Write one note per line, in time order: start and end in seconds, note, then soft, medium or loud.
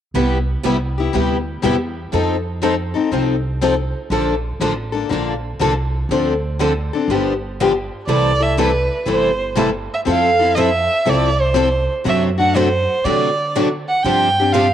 0.14 0.54 C2 medium
0.14 0.37 C3 medium
0.14 0.37 G3 medium
0.14 0.37 B3 medium
0.14 0.37 E4 medium
0.14 0.37 G4 medium
0.64 1.07 C2 medium
0.64 0.76 C3 medium
0.64 0.76 G3 medium
0.64 0.76 B3 medium
0.64 0.77 E4 medium
0.64 0.76 G4 medium
0.98 1.13 B3 soft
0.98 1.12 E4 soft
0.98 1.13 G4 soft
1.13 1.56 D2 medium
1.13 1.36 C3 medium
1.13 1.36 G3 medium
1.13 1.36 B3 medium
1.13 1.36 E4 medium
1.13 1.36 G4 medium
1.62 2.05 E2 medium
1.62 1.74 C3 medium
1.62 1.74 G3 medium
1.62 1.75 B3 medium
1.62 1.75 E4 medium
1.62 1.75 G4 medium
2.12 2.92 F2 medium
2.12 2.35 F3 medium
2.12 2.35 C4 medium
2.12 2.36 D#4 medium
2.12 2.36 A4 medium
2.62 2.74 F3 medium
2.62 2.74 C4 medium
2.62 2.74 D#4 medium
2.62 2.74 A4 medium
2.94 3.11 C4 soft
2.94 3.11 D#4 soft
2.94 3.10 A4 soft
3.11 3.91 C2 medium
3.11 3.34 F3 medium
3.11 3.34 C4 medium
3.11 3.35 D#4 medium
3.11 3.35 A4 medium
3.61 3.73 F3 medium
3.61 3.73 C4 medium
3.61 3.74 D#4 medium
3.61 3.74 A4 medium
4.10 4.50 A#1 medium
4.10 4.33 D3 medium
4.10 4.34 F3 medium
4.10 4.34 A#3 medium
4.10 4.34 D4 medium
4.10 4.34 A4 medium
4.60 5.02 A1 medium
4.60 4.72 D3 medium
4.60 4.73 F3 medium
4.60 4.73 A#3 medium
4.60 4.73 D4 medium
4.60 4.73 A4 medium
4.92 5.09 A#3 soft
4.92 5.09 D4 soft
4.92 5.09 A4 medium
5.09 5.52 A#1 medium
5.09 5.32 D3 medium
5.09 5.32 F3 medium
5.09 5.33 A#3 medium
5.09 5.33 D4 medium
5.09 5.33 A4 medium
5.59 6.02 C2 medium
5.59 5.72 D3 medium
5.59 5.72 F3 medium
5.59 5.73 A#3 medium
5.59 5.72 D4 medium
5.59 5.73 A4 medium
6.09 6.89 D2 medium
6.09 6.33 D3 medium
6.09 6.33 F3 medium
6.09 6.33 C4 medium
6.09 6.33 D4 medium
6.09 6.33 A4 medium
6.59 6.71 D3 medium
6.59 6.71 F3 medium
6.59 6.72 C4 medium
6.59 6.71 D4 medium
6.59 6.72 A4 medium
6.93 7.10 C4 soft
6.93 7.09 D4 soft
6.93 7.09 A4 medium
7.08 7.88 G1 medium
7.08 7.32 D3 medium
7.08 7.32 F3 medium
7.08 7.33 B3 medium
7.08 7.33 D4 medium
7.08 7.33 G4 medium
7.60 7.71 D3 medium
7.60 7.71 F3 medium
7.60 7.71 B3 medium
7.60 7.72 D4 medium
7.60 7.72 G4 medium
8.07 8.87 C2 medium
8.07 8.31 C3 medium
8.07 8.31 E3 medium
8.07 8.31 G3 medium
8.07 8.31 A3 medium
8.07 8.31 C4 medium
8.07 8.31 E4 medium
8.07 8.31 A4 medium
8.07 8.44 D5 medium
8.40 8.57 A3 soft
8.40 8.57 E4 soft
8.40 8.57 A4 medium
8.40 8.59 E5 medium
8.57 8.70 C3 medium
8.57 8.70 E3 medium
8.57 8.70 G3 medium
8.57 8.70 A3 medium
8.57 8.70 C4 medium
8.57 8.70 E4 medium
8.57 8.70 A4 medium
8.57 9.06 B4 medium
9.06 9.86 G1 medium
9.06 9.29 C3 medium
9.06 9.30 E3 medium
9.06 9.30 G3 medium
9.06 9.30 A3 medium
9.06 9.30 C4 medium
9.06 9.30 E4 medium
9.06 9.30 A4 medium
9.11 9.56 C5 medium
9.55 9.68 C3 medium
9.55 9.68 E3 medium
9.55 9.69 G3 medium
9.55 9.69 A3 medium
9.55 9.69 C4 medium
9.55 9.69 E4 medium
9.55 9.69 A4 medium
9.94 10.01 E5 medium
10.05 10.86 F2 medium
10.05 10.29 F3 medium
10.05 10.29 C4 medium
10.05 10.29 E4 medium
10.05 10.30 A4 medium
10.11 10.56 F5 medium
10.39 10.55 C4 soft
10.39 10.55 E4 soft
10.39 10.56 A4 medium
10.55 10.68 F3 medium
10.55 10.68 C4 medium
10.55 10.69 E4 medium
10.55 10.69 A4 medium
10.55 10.61 D#5 medium
10.59 11.11 E5 medium
11.05 11.86 C2 medium
11.05 11.29 F3 medium
11.05 11.29 C4 medium
11.05 11.29 E4 medium
11.05 11.29 A4 medium
11.09 11.42 D5 medium
11.41 11.90 C5 medium
11.54 11.67 F3 medium
11.54 11.67 C4 medium
11.54 11.68 E4 medium
11.54 11.68 A4 medium
12.04 12.85 F#2 medium
12.04 12.28 C3 medium
12.04 12.28 F#3 medium
12.04 12.28 A3 medium
12.04 12.29 C4 medium
12.04 12.28 D4 medium
12.04 12.29 F#4 medium
12.04 12.29 A4 medium
12.09 12.23 E5 medium
12.38 12.54 A3 soft
12.38 12.54 D4 soft
12.38 12.54 F#4 soft
12.38 12.58 F#5 medium
12.55 12.67 C3 medium
12.55 12.67 F#3 medium
12.55 12.67 A3 medium
12.55 12.68 C4 medium
12.55 12.67 D4 medium
12.55 12.68 F#4 medium
12.55 12.68 A4 medium
12.55 13.06 C5 medium
13.04 13.28 C3 medium
13.04 13.84 D3 medium
13.04 13.28 F#3 medium
13.04 13.28 A3 medium
13.04 13.28 C4 medium
13.04 13.28 D4 medium
13.04 13.28 F#4 medium
13.04 13.28 A4 medium
13.04 13.54 D5 medium
13.56 13.67 C3 medium
13.56 13.67 F#3 medium
13.56 13.67 A3 medium
13.56 13.67 C4 medium
13.56 13.68 D4 medium
13.56 13.68 F#4 medium
13.56 13.68 A4 medium
13.89 14.04 F#5 medium
14.03 14.74 G2 medium
14.03 14.28 C3 medium
14.03 14.28 F3 medium
14.03 14.28 C4 medium
14.03 14.28 D4 medium
14.03 14.28 G4 medium
14.03 14.54 G5 medium
14.40 14.53 C4 soft
14.40 14.53 D4 soft
14.40 14.54 G4 soft
14.53 14.66 C3 medium
14.53 14.66 F3 medium
14.53 14.66 C4 medium
14.53 14.66 D4 medium
14.53 14.67 G4 medium
14.53 14.74 F5 medium